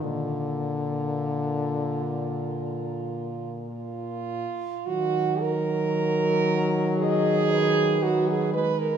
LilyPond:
<<
  \new Staff \with { instrumentName = "French horn" } { \time 4/4 \key ees \minor \tempo 4 = 54 bes'2.~ bes'8 r8 | r2 ees''8 ces''4. | }
  \new Staff \with { instrumentName = "French horn" } { \time 4/4 \key ees \minor f'2. f'4 | ges'8 bes'4. aes'4 ges'16 aes'16 ces''16 bes'16 | }
  \new Staff \with { instrumentName = "French horn" } { \clef bass \time 4/4 \key ees \minor d2. r4 | ges2. ges8 aes8 | }
  \new Staff \with { instrumentName = "French horn" } { \clef bass \time 4/4 \key ees \minor bes,2.~ bes,8 r8 | ees1 | }
>>